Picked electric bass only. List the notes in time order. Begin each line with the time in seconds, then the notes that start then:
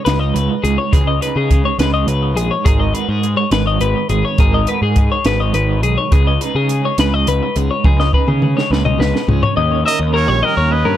0.06 C#2
0.35 C#2
0.64 C#2
0.93 C#2
1.36 C#3
1.79 C#2
2.07 C#2
2.36 A#1
2.66 G#1
3.08 G#2
3.51 G#1
3.80 G#1
4.10 G#1
4.38 G#1
4.82 G#2
5.25 G#1
5.54 G#1
5.84 B1
6.12 C#2
6.55 C#3
6.98 C#2
7.27 C#2
7.56 C#2
7.84 C#2
8.28 C#3
8.70 C#2
8.99 C#2
9.28 C#2
9.57 D#2
10.00 D#2
10.28 A#1
10.57 D#2
10.85 G2